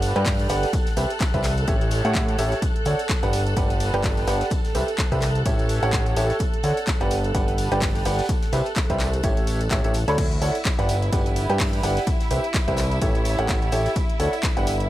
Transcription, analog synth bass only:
0.00 0.13 G1 loud
0.16 0.48 G2 loud
0.50 0.65 G1 loud
0.97 1.06 C2 loud
1.34 1.66 C2 medium
1.68 2.02 A1 loud
2.05 2.37 A2 loud
2.39 2.54 A1 loud
2.86 2.95 D2 loud
3.23 3.55 G1 medium
3.57 3.91 G1 loud
3.94 4.26 G1 loud
4.28 4.43 G1 loud
4.75 4.84 C2 loud
5.12 5.44 C2 medium
5.46 5.80 A1 loud
5.83 6.14 A1 loud
6.16 6.32 A1 loud
6.64 6.73 D2 loud
7.01 7.33 G1 medium
7.35 7.69 G1 loud
7.72 8.03 G1 medium
8.05 8.21 G1 loud
8.53 8.62 C2 loud
8.90 9.22 C2 loud
9.24 9.69 A1 loud
9.71 9.82 A1 loud
9.84 10.05 A1 loud
10.08 10.40 D2 medium
10.42 10.51 D2 medium
10.79 11.10 G1 medium
11.13 11.47 G1 loud
11.50 11.81 G2 loud
11.83 11.99 G1 loud
12.31 12.40 C2 medium
12.68 13.00 C2 medium
13.02 13.36 A1 loud
13.39 13.70 A1 loud
13.72 13.88 A1 loud
14.20 14.29 D2 loud
14.57 14.88 G1 loud

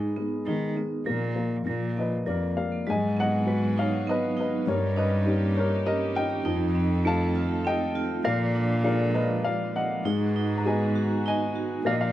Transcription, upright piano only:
0.00 0.18 G#3 medium
0.00 1.63 D#4 soft
0.00 2.22 G#4 medium
0.00 1.08 B4 medium
0.00 1.08 D#5 medium
0.18 0.46 G#3 soft
0.48 0.75 G#3 medium
0.77 1.05 G#3 soft
1.07 1.34 A#3 medium
1.36 1.65 A#3 soft
1.66 2.84 A#2 medium
1.97 2.85 F3 soft
1.97 2.27 B4 medium
1.97 2.26 D#5 medium
2.27 2.56 A#3 soft
2.27 2.56 A#4 medium
2.27 2.56 D5 medium
2.57 2.87 A#3 soft
2.57 2.85 D5 medium
2.57 2.88 F5 medium
2.87 4.63 G#3 medium
2.87 3.17 D#5 medium
2.87 3.20 G#5 medium
3.20 3.75 D#5 medium
3.20 3.74 F#5 medium
3.46 4.05 F#4 soft
3.46 4.05 G#4 soft
3.46 4.05 B4 soft
3.79 4.06 C#5 medium
3.79 4.09 F5 medium
4.09 4.37 B4 medium
4.09 4.36 D#5 medium
4.40 4.67 B4 medium
4.40 4.66 D#5 medium
4.67 6.41 G3 medium
4.67 4.96 A#4 medium
4.67 4.95 C#5 medium
4.97 5.52 B4 medium
4.97 5.58 D#5 medium
5.25 5.83 D#4 soft
5.25 5.83 G4 soft
5.25 5.56 C#5 soft
5.57 5.85 A#4 medium
5.57 5.87 C#5 medium
5.87 6.14 A#4 medium
5.87 6.16 D#5 medium
6.16 7.02 D#5 medium
6.16 7.08 G5 loud
6.46 8.20 F3 medium
7.05 7.62 D#4 soft
7.05 7.63 F4 soft
7.05 7.63 A4 medium
7.05 7.62 F5 medium
7.05 7.67 A5 medium
7.67 8.21 D#5 medium
7.67 8.27 G5 loud
8.25 10.02 A#3 medium
8.25 8.81 D5 medium
8.25 8.83 F5 medium
8.84 9.43 F4 soft
8.84 9.43 G#4 soft
8.84 9.13 A#4 medium
8.84 9.15 D5 medium
8.84 9.43 F5 medium
9.14 9.43 B4 medium
9.14 9.42 D#5 medium
9.44 9.73 D5 medium
9.44 9.76 F5 medium
9.76 10.55 D#5 medium
9.76 10.61 F#5 medium
10.05 11.81 G#3 medium
10.58 10.65 A#5 medium
10.66 11.24 F#4 soft
10.66 11.24 G#4 soft
10.66 11.24 B4 soft
10.66 11.22 D#5 medium
10.66 11.26 G#5 medium
11.28 11.82 D#5 medium
11.28 11.88 G#5 medium
11.85 12.12 A#3 medium
11.85 11.93 D5 medium
11.85 11.93 F5 medium
11.91 11.99 D#5 medium
12.01 12.12 D5 medium
12.01 12.12 F5 medium

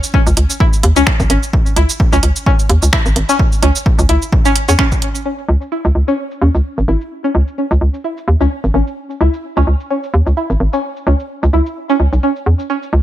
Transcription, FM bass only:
0.27 0.33 C#2 loud
0.37 0.45 C#2 medium
0.83 0.92 D#2 loud
0.96 1.03 C#2 medium
1.20 1.26 G#1 medium
1.30 1.38 G#1 medium
1.76 1.85 C#2 loud
2.13 2.19 C#2 loud
2.23 2.31 C#2 medium
2.70 2.78 D#2 loud
2.83 2.89 C#2 medium
3.06 3.12 G#1 medium
3.16 3.24 G#1 loud
3.63 3.71 C#2 loud
3.99 4.05 C#2 loud
4.09 4.17 C#2 medium
4.69 4.75 E2 medium
5.49 5.57 C#2 loud
5.85 5.91 C#2 loud
5.95 6.03 C#2 medium
6.42 6.50 D#2 loud
6.55 6.61 C#2 medium
6.78 6.84 G#1 medium
6.88 6.96 G#1 medium
7.35 7.43 C#2 medium
7.71 7.77 C#2 loud
7.81 7.89 C#2 medium
8.28 8.36 D#2 loud
8.41 8.47 C#2 medium
8.64 8.70 G#1 medium
8.74 8.82 G#1 loud
9.21 9.29 C#2 loud
9.57 9.63 C#2 loud
9.67 9.75 C#2 medium
10.14 10.22 D#2 loud
10.27 10.33 C#2 medium
10.50 10.56 G#1 medium
10.60 10.68 G#1 medium
11.07 11.15 C#2 loud
11.43 11.49 C#2 loud
11.53 11.61 C#2 medium
12.00 12.08 C#2 medium
12.13 12.19 B1 medium
12.46 12.54 E2 medium
12.93 13.01 C#2 loud

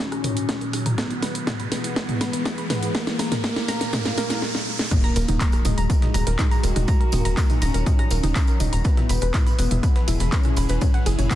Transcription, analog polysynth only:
0.00 0.88 C#4 loud
0.98 1.62 B3 medium
1.72 1.94 B3 medium
1.96 2.60 B3 loud
2.70 2.93 B3 medium
2.95 3.42 A#3 loud
3.44 3.91 A#3 loud
3.93 4.16 A#3 loud
4.18 4.40 A#3 loud
4.91 5.55 A#3 loud
5.65 6.29 G#3 loud
6.39 7.03 G#3 medium
7.13 7.58 A#3 loud
7.62 8.75 C#4 loud
8.85 9.49 B3 loud
9.59 10.23 B3 loud
10.32 10.96 C#4 loud
11.06 11.35 E4 medium

